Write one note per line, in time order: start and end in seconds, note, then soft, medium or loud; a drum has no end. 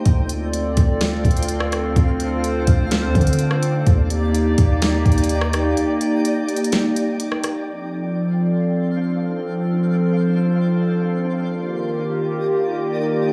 0.00 3.83 A3 medium
0.00 1.92 C5 medium
0.06 0.74 D2 loud
0.06 3.83 C4 medium
0.06 3.83 D4 medium
0.06 3.83 F4 medium
0.06 3.83 A4 medium
0.06 1.94 D5 loud
0.06 3.83 F5 medium
0.06 kick loud
0.06 closed hi-hat medium
0.29 closed hi-hat medium
0.53 closed hi-hat medium
0.77 1.23 D2 loud
0.77 kick loud
0.77 closed hi-hat medium
1.01 snare loud
1.01 closed hi-hat medium
1.25 1.93 D2 loud
1.25 kick medium
1.25 closed hi-hat soft
1.31 closed hi-hat medium
1.37 closed hi-hat medium
1.43 closed hi-hat medium
1.48 closed hi-hat medium
1.60 cross-stick loud
1.72 cross-stick medium
1.72 closed hi-hat medium
1.96 2.65 D2 loud
1.96 3.85 C5 loud
1.96 7.64 D5 medium
1.96 kick loud
1.96 closed hi-hat medium
2.20 closed hi-hat medium
2.44 closed hi-hat medium
2.67 3.05 D2 loud
2.67 kick loud
2.67 closed hi-hat medium
2.91 snare loud
2.91 closed hi-hat medium
3.03 3.14 D#2 loud
3.15 3.84 D3 loud
3.15 kick medium
3.15 closed hi-hat soft
3.21 closed hi-hat medium
3.27 closed hi-hat medium
3.33 closed hi-hat medium
3.39 closed hi-hat medium
3.51 cross-stick medium
3.63 closed hi-hat medium
3.87 4.55 D#2 loud
3.87 7.64 A#3 medium
3.87 7.64 D#4 medium
3.87 7.64 G4 medium
3.87 7.64 D5 medium
3.87 7.64 G5 medium
3.87 kick loud
3.87 closed hi-hat medium
4.10 closed hi-hat medium
4.35 closed hi-hat medium
4.58 5.04 D#2 loud
4.58 kick loud
4.58 closed hi-hat medium
4.82 snare loud
4.82 closed hi-hat medium
5.06 5.74 D#2 loud
5.06 kick medium
5.06 closed hi-hat soft
5.12 closed hi-hat medium
5.18 closed hi-hat medium
5.24 closed hi-hat medium
5.29 closed hi-hat medium
5.41 cross-stick loud
5.53 cross-stick loud
5.53 closed hi-hat medium
5.77 closed hi-hat medium
6.01 closed hi-hat medium
6.25 closed hi-hat medium
6.48 closed hi-hat soft
6.56 closed hi-hat medium
6.64 closed hi-hat medium
6.72 snare loud
6.72 closed hi-hat medium
6.96 closed hi-hat medium
7.20 closed hi-hat medium
7.32 cross-stick medium
7.44 cross-stick medium
7.44 closed hi-hat medium
7.67 11.45 F3 medium
7.67 11.45 C4 medium
7.67 11.45 D4 medium
7.67 13.33 F4 medium
7.67 11.44 A4 medium
7.67 11.45 C5 medium
7.67 9.56 D5 medium
7.67 11.45 F5 medium
9.58 11.47 C5 medium
11.48 13.33 D#3 medium
11.48 13.33 A#3 medium
11.48 13.33 D#4 medium
11.48 13.33 G4 medium
11.48 13.33 A#4 medium
11.48 13.33 D5 medium
11.48 13.33 G5 medium